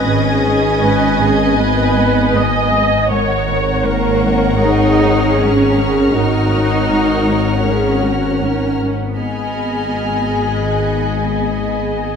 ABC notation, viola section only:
X:1
M:4/4
L:1/8
Q:1/4=79
K:G#m
V:1 name="Viola section"
G2 B G B2 d2 | c2 A A G4 | F4 G F A z | G8 |]